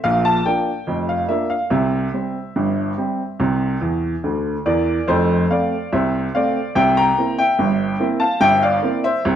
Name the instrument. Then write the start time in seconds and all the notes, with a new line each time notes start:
upright piano
0.04 A#1 A#2 F5
0.25 A5
0.45 A#3 D4 F4 G5
0.87 F1 F2
1.09 F5
1.29 A#3 D4 F4 E5
1.50 F5
1.70 C2 C3 E5
2.14 G3 C4
2.56 G1 G2
2.98 G3 C4
3.39 C2 C3
3.81 E2 E3
4.24 D2 D3
4.66 E2 E3 A#4 D5
5.08 F1 F2 A4 C5
5.51 A3 C4 D5 F5
5.93 C2 C3 C5 E5
6.35 A3 C4 D5 F5
6.75 C2 C3 E5 G5
6.97 G5 A#5
7.18 A#3 C4 E4
7.38 E5 G5
7.59 G1 G2
8.00 A#3 C4 E4
8.20 F5 A5
8.41 G1 G2 E5 G5
8.63 D5 F5
8.82 A#3 C4 E4
9.04 C5 E5
9.25 C2 C3